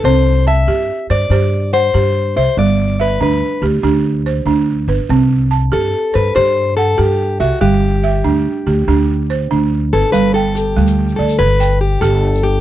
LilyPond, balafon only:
\new Staff \with { instrumentName = "Balafon" } { \time 12/8 \key g \major \tempo 4. = 95 << { b'8 r8 a''4. c''8 c''4 fis''4. e''8~ | e''8 r8 e''4. g'8 g'4 c''4. b'8~ | b'8 r8 a''4. c''8 c''4 fis''4. e''8~ | e''8 r8 e''4. g'8 g'4 c''4. b'8~ |
b'8 g''4. r8 d''4 g''4. r4 | } \\ { c'4 r8 g'4 r8 g'4 r8 g'4 r8 | g4 r8 d'4 r8 d'4 r8 d'4 r8 | c'4 r8 g'4 r8 g'4 r8 g'4 r8 | g4 r8 d'4 r8 d'4 r8 d'4 r8 |
g4 r8 g4 r8 b'4 r8 g'4 r8 | } >> }